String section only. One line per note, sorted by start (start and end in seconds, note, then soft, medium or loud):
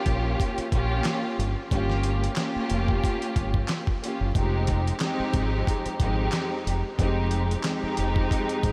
0.00 0.64 A#3 medium
0.00 0.64 C#4 medium
0.00 0.64 F4 medium
0.00 0.65 G4 loud
0.72 1.49 A#3 loud
0.72 1.49 C#4 loud
0.72 1.49 F4 loud
0.72 1.50 G4 loud
1.71 2.32 A#3 medium
1.71 2.33 C#4 medium
1.71 2.33 F4 medium
1.71 2.33 G4 loud
2.35 3.89 A#3 loud
2.35 3.89 C#4 medium
2.35 3.90 F4 loud
2.35 3.90 G4 loud
4.02 4.33 A#3 medium
4.02 4.33 C#4 medium
4.02 4.33 F4 medium
4.02 4.34 G4 medium
4.34 4.95 F2 medium
4.34 4.96 G#3 medium
4.34 4.96 C4 medium
4.34 4.96 D#4 medium
4.34 4.97 G4 loud
5.00 5.92 F2 medium
5.00 5.92 G#3 medium
5.00 5.93 C4 loud
5.00 5.93 D#4 medium
5.00 5.93 G4 loud
5.99 6.76 F2 loud
5.99 6.76 G#3 medium
5.99 6.76 C4 medium
5.99 6.77 D#4 medium
5.99 6.77 G4 loud
6.98 7.60 F2 medium
6.98 7.60 G#3 medium
6.98 7.60 C4 medium
6.98 7.60 D#4 medium
6.98 7.61 G4 loud
7.64 8.72 F2 loud
7.64 8.72 G#3 medium
7.64 8.72 C4 medium
7.64 8.72 D#4 loud
7.64 8.72 G4 loud